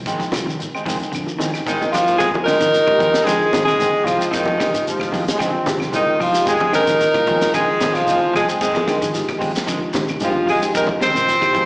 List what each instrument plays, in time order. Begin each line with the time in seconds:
0.06 fingered electric bass G#1, clean electric guitar D#3 G#3 C4, kick, closed hi-hat, shekere
0.19 clean electric guitar F3, kick, snare, shekere
0.32 fingered electric bass C2, muted clean electric guitar stroke, snare, closed hi-hat, high conga, claves, shekere
0.45 clean electric guitar D#3, muted clean electric guitar stroke, high conga
0.50 shekere
0.59 muted clean electric guitar stroke, closed hi-hat, shekere
0.74 clean electric guitar G#3 C4, muted fingered electric bass stroke, claves, shekere
0.85 fingered electric bass F1, clean electric guitar D#3 F3 G#3 C4, kick, open hi-hat, high conga, shekere
0.99 muted fingered electric bass stroke, muted clean electric guitar stroke, closed hi-hat, shekere
1.12 fingered electric bass F2, clean electric guitar D3, closed hi-hat, claves, shekere
1.26 muted clean electric guitar stroke, high conga, shekere
1.38 clean electric guitar D#3 G#3 C4, snare, closed hi-hat, high conga, shekere
1.53 muted clean electric guitar stroke, snare, claves, shekere
1.66 clean electric guitar D#3 G#3 C4, tenor saxophone D#3, alto saxophone D#4, kick, closed hi-hat, low conga, shekere
1.81 low conga, shekere
1.91 clean electric guitar F3, tenor saxophone F3, alto saxophone F4, muted clean electric guitar stroke, snare, closed hi-hat, low conga, claves, shekere
2.07 muted clean electric guitar stroke, closed hi-hat, low conga, shekere
2.18 fingered electric bass F2, clean electric guitar D#3 G#3 C4, tenor saxophone G#3, alto saxophone G#4, kick, closed hi-hat, high conga, shekere
2.34 clean electric guitar F3, muted clean electric guitar stroke, kick, high conga
2.44 clean electric guitar D3 D#3 G#3, tenor saxophone D#4, alto saxophone A#4, snare, closed hi-hat, claves, shekere
2.49 clean electric guitar C4
2.60 clean electric guitar D#3, fingered electric bass F3, muted clean electric guitar stroke, snare, closed hi-hat, shekere
2.72 muted clean electric guitar stroke, snare, closed hi-hat, high conga, shekere
2.87 reed electric piano G#3 D#4 G4, kick, high conga, claves
2.97 fingered electric bass D#2, clean electric guitar D#3 F3 G#3 C4, kick, closed hi-hat, low conga
3.02 shekere
3.13 muted clean electric guitar stroke, muted fingered electric bass stroke, snare, closed hi-hat, shekere
3.24 clean electric guitar D3 D#3 G#3 C4, fingered electric bass F3, tenor saxophone G#3, alto saxophone G#4, kick, closed hi-hat, claves
3.28 shekere
3.38 muted clean electric guitar stroke
3.51 clean electric guitar D#3, muted clean electric guitar stroke, snare, closed hi-hat, high conga, shekere
3.65 fingered electric bass C2, tenor saxophone G#3, alto saxophone G#4, snare, low conga, claves, shekere
3.78 clean electric guitar D#3 G#3 C4, snare, closed hi-hat, high conga
3.82 shekere
3.93 muted clean electric guitar stroke, high conga
4.04 fingered electric bass C2, tenor saxophone F3, clean electric guitar F3, alto saxophone F4, muted clean electric guitar stroke, snare, closed hi-hat, low conga, claves, shekere
4.18 clean electric guitar G#3 C4, closed hi-hat, shekere
4.31 fingered electric bass F2, clean electric guitar D#3 G#3 C4, tenor saxophone D#3, alto saxophone D#4, kick, closed hi-hat, shekere
4.45 clean electric guitar F3, muted clean electric guitar stroke, kick, high conga
4.58 clean electric guitar D3 D#3 G#3 C4, reed electric piano G#3 D#4 G4, kick, snare, closed hi-hat, claves, shekere
4.73 fingered electric bass F3, muted clean electric guitar stroke, closed hi-hat, shekere
4.85 trombone section F3, reed electric piano G#3 D#4 G4, muted clean electric guitar stroke, closed hi-hat, high conga, shekere
4.99 kick, snare, high conga, claves
5.11 fingered electric bass D#2, clean electric guitar D#3 F3 G#3 C4, kick, open hi-hat, high conga, low conga, shekere
5.26 trombone section G#3, muted clean electric guitar stroke, muted fingered electric bass stroke, snare, closed hi-hat, shekere
5.38 clean electric guitar D3 D#3 G#3 C4, fingered electric bass F3, trombone section C4, kick, snare, closed hi-hat, claves, shekere
5.52 muted clean electric guitar stroke
5.63 clean electric guitar D#3, reed electric piano G#3 D#4 G4, muted clean electric guitar stroke, closed hi-hat, high conga, shekere
5.68 snare
5.80 fingered electric bass C2, snare, low conga, claves, shekere
5.90 clean electric guitar D#3 G#3 C4, reed electric piano G#3 D#4, closed hi-hat, high conga, shekere
5.94 tenor saxophone D#3, alto saxophone D#4, reed electric piano F4
6.05 muted clean electric guitar stroke
6.17 fingered electric bass C2, clean electric guitar F3, tenor saxophone F3, muted clean electric guitar stroke, open hi-hat, low conga, claves, shekere
6.22 alto saxophone F4
6.32 reed electric piano G#3 D#4 G4, clean electric guitar C4, muted clean electric guitar stroke, shekere
6.45 fingered electric bass F2, clean electric guitar D#3 G#3 C4, tenor saxophone G#3, alto saxophone G#4, kick, closed hi-hat, shekere
6.59 clean electric guitar F3, muted clean electric guitar stroke, kick, high conga
6.72 clean electric guitar D3 D#3 G#3 C4, tenor saxophone D#4, alto saxophone A#4, snare, closed hi-hat, claves, shekere
6.86 clean electric guitar D#3, fingered electric bass F3, muted clean electric guitar stroke, snare, closed hi-hat, shekere
7.00 muted clean electric guitar stroke, snare, closed hi-hat, high conga, shekere
7.14 reed electric piano G#3 D#4 F4, kick, snare, high conga, claves
7.26 fingered electric bass D#2, clean electric guitar D#3 F3 G#3 C4, kick, closed hi-hat, low conga, shekere
7.41 muted clean electric guitar stroke, muted fingered electric bass stroke, snare, closed hi-hat, shekere
7.53 clean electric guitar D3 D#3 G#3 C4, fingered electric bass F3, tenor saxophone G#3, alto saxophone G#4, kick, closed hi-hat, claves, shekere
7.68 muted clean electric guitar stroke
7.80 clean electric guitar D#3, muted clean electric guitar stroke, snare, closed hi-hat, high conga, shekere
7.94 fingered electric bass C2, tenor saxophone F3, alto saxophone F4, snare, claves, shekere
8.07 clean electric guitar D#3 G#3 C4, closed hi-hat, high conga, shekere
8.22 muted clean electric guitar stroke, high conga
8.33 fingered electric bass C2, clean electric guitar F3, tenor saxophone G#3, alto saxophone G#4, muted clean electric guitar stroke, snare, closed hi-hat, low conga, claves, shekere
8.48 clean electric guitar G#3 C4, closed hi-hat, shekere
8.61 fingered electric bass F2, clean electric guitar D#3 G#3 C4, tenor saxophone G#3, alto saxophone G#4, kick, closed hi-hat, high conga, shekere
8.75 clean electric guitar F3, muted clean electric guitar stroke, kick, snare, high conga
8.86 clean electric guitar D3 D#3 G#3 C4, reed electric piano G#3 D#4 A#4, kick, snare, closed hi-hat, claves, shekere
9.00 clean electric guitar D#3, fingered electric bass F3, muted clean electric guitar stroke, closed hi-hat, shekere
9.12 reed electric piano G#3 D#4 G4, muted clean electric guitar stroke, snare, closed hi-hat, high conga, shekere
9.29 kick, snare, high conga, claves
9.38 fingered electric bass D#2, clean electric guitar F3 G#3 C4, muted clean electric guitar stroke, kick, open hi-hat, low conga, shekere
9.54 muted clean electric guitar stroke, muted fingered electric bass stroke, snare, closed hi-hat, shekere
9.67 clean electric guitar D3 D#3 G#3, fingered electric bass F3, muted clean electric guitar stroke, kick, closed hi-hat, high conga, claves, shekere
9.81 muted clean electric guitar stroke
9.93 clean electric guitar D#3, reed electric piano G#3 D#4 G4, muted clean electric guitar stroke, snare, closed hi-hat, high conga, shekere
10.08 fingered electric bass C2, low conga, claves, shekere
10.20 fingered electric bass G2, clean electric guitar D#3 G#3 C4, tenor saxophone F3, reed electric piano G#3 D#4 G4, alto saxophone F4, closed hi-hat, high conga, shekere
10.35 muted clean electric guitar stroke, high conga
10.46 fingered electric bass F2, clean electric guitar F3, alto saxophone G#4, muted clean electric guitar stroke, open hi-hat, low conga, claves, shekere
10.51 tenor saxophone G#3
10.61 reed electric piano G#3 D#4 G4, clean electric guitar G#3 C4, shekere
10.73 fingered electric bass F2, clean electric guitar D#3 G#3 C4, tenor saxophone D#4, alto saxophone A#4, kick, closed hi-hat, shekere
10.87 clean electric guitar F3, muted clean electric guitar stroke, kick, high conga
11.00 clean electric guitar D3 D#3 G#3 C4, tenor saxophone C4, alto saxophone C5, snare, closed hi-hat, claves, shekere
11.14 clean electric guitar C3, fingered electric bass F3, muted clean electric guitar stroke, closed hi-hat, shekere
11.28 muted clean electric guitar stroke, snare, closed hi-hat, high conga, shekere
11.41 reed electric piano G#3 D#4 G4, kick, snare, high conga, claves
11.53 fingered electric bass D#2, clean electric guitar D#3 F3 G#3 C4, kick, closed hi-hat, high conga, low conga, shekere